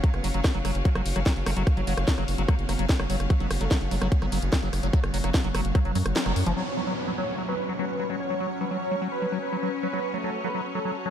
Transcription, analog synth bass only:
0.14 0.21 F#1 medium
0.24 0.31 F#1 medium
0.34 0.41 F#1 medium
0.55 0.62 F#1 medium
0.65 0.72 F#1 medium
0.75 0.82 F#1 loud
0.95 1.03 F#1 medium
1.06 1.13 F#1 loud
1.16 1.23 F#1 loud
1.36 1.43 F#1 medium
1.46 1.54 F#1 loud
1.57 1.64 F#1 loud
1.77 1.84 F#1 medium
1.87 1.94 F#1 medium
1.97 2.05 F#1 medium
2.18 2.25 F#1 medium
2.28 2.35 F#1 medium
2.38 2.45 F#1 medium
2.59 2.66 F#1 medium
2.69 2.76 F#1 loud
2.79 2.86 F#1 medium
2.99 3.07 F#1 medium
3.10 3.17 F#1 loud
3.20 3.27 F#1 medium
3.40 3.47 F#1 medium
3.51 3.58 F#1 medium
3.61 3.68 F#1 medium
3.81 3.88 F#1 medium
3.91 3.99 F#1 loud
4.02 4.09 F#1 medium
4.22 4.29 F#1 medium
4.32 4.39 F#1 loud
4.42 4.50 F#1 loud
4.63 4.70 F#1 medium
4.73 4.80 F#1 medium
4.83 4.90 F#1 medium
5.04 5.11 F#1 medium
5.14 5.21 F#1 loud
5.24 5.31 F#1 medium
5.44 5.52 F#1 medium
5.55 5.62 F#1 loud
5.65 5.72 F#1 medium
5.85 5.92 F#1 medium
5.95 6.03 F#2 loud
6.06 6.13 F#1 loud
6.26 6.33 F#1 medium
6.36 6.43 F#2 loud
6.46 6.54 F#1 medium

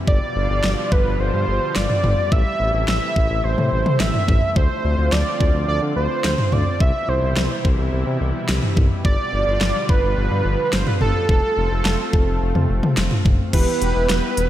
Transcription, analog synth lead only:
0.08 0.93 D5 loud
0.92 1.21 B4 medium
1.20 1.77 C5 loud
1.76 2.33 D5 loud
2.32 2.87 E5 loud
2.88 3.45 E5 loud
3.44 4.01 C5 loud
4.00 4.58 E5 loud
4.56 5.14 C5 loud
5.12 5.68 D5 loud
5.68 5.81 D5 medium
5.96 6.54 C5 medium
6.53 6.82 D5 medium
6.81 7.10 E5 loud
7.09 7.65 C5 medium
9.05 9.91 D5 loud
9.89 10.75 B4 loud
10.73 10.87 C5 loud
10.88 10.94 B4 medium
11.01 12.93 A4 medium
13.53 14.49 B4 loud

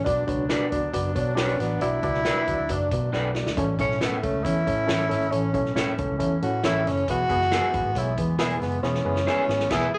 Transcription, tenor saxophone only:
0.04 0.26 D4 medium
1.17 1.40 D4 medium
1.38 1.62 C#4 medium
1.60 1.81 B3 medium
1.82 2.73 E4 loud
2.71 2.92 D4 medium
3.80 4.03 C#4 medium
4.02 4.22 B3 medium
4.23 4.45 A3 medium
4.44 5.33 E4 loud
5.32 5.54 C#4 medium
6.43 6.63 F#4 medium
6.66 6.90 E4 loud
6.89 7.09 C#4 loud
7.11 8.00 F#4 loud
7.98 8.19 E4 medium
8.62 8.82 B3 medium
8.83 9.73 C#4 loud
9.72 9.93 E4 loud
9.94 9.98 G#4 medium

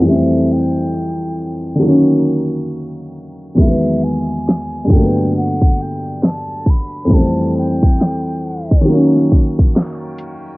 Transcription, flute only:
0.08 0.54 E5 medium
0.52 1.83 G5 medium
3.60 4.05 E5 medium
4.04 4.94 G#5 medium
4.92 5.35 G5 medium
5.37 5.83 F#5 medium
5.82 6.24 G5 medium
6.26 6.72 A5 medium
6.70 7.15 B5 medium
7.14 7.56 A5 loud
7.58 8.85 G5 medium

